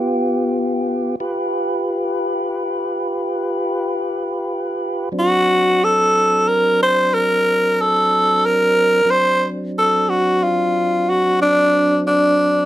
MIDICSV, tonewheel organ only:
0, 0, Header, 1, 2, 480
1, 0, Start_track
1, 0, Tempo, 654308
1, 883, Time_signature, 12, 3, 24, 8
1, 9284, End_track
2, 0, Start_track
2, 0, Title_t, "Tonewheel organ"
2, 0, Program_c, 0, 16
2, 0, Note_on_c, 0, 59, 62
2, 0, Note_on_c, 0, 65, 62
2, 0, Note_on_c, 0, 67, 67
2, 848, Note_off_c, 0, 59, 0
2, 848, Note_off_c, 0, 65, 0
2, 848, Note_off_c, 0, 67, 0
2, 882, Note_on_c, 0, 71, 62
2, 883, Note_on_c, 0, 65, 62
2, 885, Note_on_c, 0, 67, 68
2, 3734, Note_off_c, 0, 71, 0
2, 3735, Note_off_c, 0, 65, 0
2, 3736, Note_off_c, 0, 67, 0
2, 3755, Note_on_c, 0, 54, 59
2, 3759, Note_on_c, 0, 60, 60
2, 3762, Note_on_c, 0, 62, 57
2, 6614, Note_off_c, 0, 54, 0
2, 6616, Note_off_c, 0, 60, 0
2, 6617, Note_off_c, 0, 62, 0
2, 6637, Note_on_c, 0, 62, 62
2, 6643, Note_on_c, 0, 54, 68
2, 6644, Note_on_c, 0, 60, 64
2, 9284, Note_off_c, 0, 54, 0
2, 9284, Note_off_c, 0, 60, 0
2, 9284, Note_off_c, 0, 62, 0
2, 9284, End_track
0, 0, End_of_file